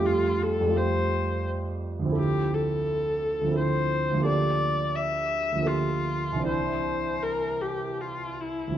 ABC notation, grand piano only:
X:1
M:3/4
L:1/8
Q:1/4=84
K:Dm
V:1 name="Grand piano"
[F,,G,A,FG]2 [F,,G,A,FG]4 | [D,,F,CEA]4 [D,,F,CEA]2 | [D,,F,B,GA]4 [D,,F,B,GA]2 | [C,,E,CDE]6 |]